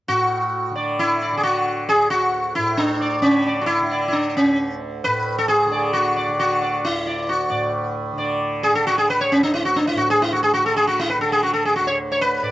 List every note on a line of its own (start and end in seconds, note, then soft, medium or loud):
0.08 2.57 A2 soft
0.08 0.72 F#4 medium
0.71 1.33 D3 medium
0.76 0.97 D5 soft
0.99 1.37 E4 medium
1.22 1.43 D5 soft
1.33 3.20 D3 medium
1.37 1.43 G#4 medium
1.43 1.88 F#4 medium
1.89 2.10 G#4 medium
1.95 4.44 D2 soft
2.10 2.55 F#4 medium
2.55 5.06 A2 medium
2.55 2.79 E4 medium
2.77 3.22 D4 medium
3.01 3.22 D5 soft
3.20 3.81 D3 medium
3.20 3.62 C#4 medium
3.46 3.67 D5 soft
3.61 3.66 F#4 medium
3.66 4.07 E4 medium
3.81 5.66 D3 soft
3.92 4.12 D5 soft
4.08 4.14 E4 medium
4.13 4.36 D4 medium
4.37 4.78 C#4 medium
4.44 6.87 D2 medium
5.04 7.50 A2 medium
5.04 5.38 B4 medium
5.38 5.48 A4 medium
5.48 5.93 G#4 medium
5.66 6.28 D3 medium
5.72 5.92 D5 soft
5.93 6.38 F#4 medium
6.16 6.37 D5 soft
6.28 8.13 D3 medium
6.39 6.85 F#4 medium
6.62 6.82 D5 soft
6.85 9.34 D2 soft
6.85 7.30 E4 medium
7.07 7.27 D5 soft
7.29 7.92 F#4 medium
7.50 9.94 A2 medium
7.50 7.71 D5 soft
8.13 8.73 D3 medium
8.18 8.39 D5 soft
8.63 8.74 G#4 medium
8.73 10.58 D3 medium
8.73 8.86 A4 medium
8.87 8.97 F#4 medium
8.98 9.08 G#4 medium
9.10 9.20 B4 medium
9.21 9.31 C#5 medium
9.32 11.80 D2 medium
9.32 9.42 C#4 medium
9.43 9.53 D4 medium
9.54 9.63 E4 medium
9.65 9.76 F#4 medium
9.76 9.87 D4 medium
9.87 9.98 E4 medium
9.94 12.42 A2 medium
9.94 10.09 F#4 medium
10.10 10.20 G#4 medium
10.22 10.32 E4 medium
10.33 10.42 F#4 medium
10.43 10.53 G#4 medium
10.54 10.64 F#4 medium
10.58 11.19 D3 medium
10.66 10.76 A4 medium
10.76 10.87 G#4 medium
10.87 10.98 F#4 medium
10.99 11.10 E4 medium
11.10 11.20 B4 medium
11.19 12.51 D3 medium
11.19 11.32 A4 medium
11.32 11.42 G#4 medium
11.43 11.53 F#4 medium
11.54 11.65 A4 medium
11.65 11.75 G#4 medium
11.76 11.86 F#4 medium
11.81 12.51 D2 medium
11.87 11.97 C#5 medium
12.12 12.19 C#5 medium
12.21 12.51 B4 medium
12.42 12.51 A2 medium
12.42 12.51 D5 soft